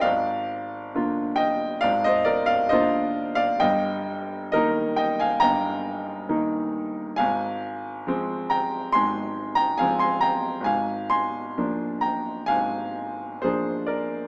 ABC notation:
X:1
M:4/4
L:1/16
Q:1/4=67
K:Bbmix
V:1 name="Grand piano"
[df]6 [eg]2 [df] [ce] [Bd] [df] [ce]3 [df] | [eg]4 [Be]2 [eg] [fa] [gb]4 z4 | [fa]6 [gb]2 [ac']3 [gb] [fa] [ac'] [gb]2 | [fa]2 [ac']4 [gb]2 [fa]4 [Ac]2 [Bd]2 |]
V:2 name="Grand piano" clef=bass
[A,,,A,,]4 [D,B,F]4 [A,,,A,,]4 [D,B,F]4 | [G,,,G,,]4 [E,B,E]4 [G,,,G,,]4 [E,B,E]4 | [A,,,A,,]4 [F,A,C]4 [A,,,A,,]4 [F,A,C]4 | [A,,,A,,]4 [F,B,D]4 [A,,,A,,]4 [F,B,D]4 |]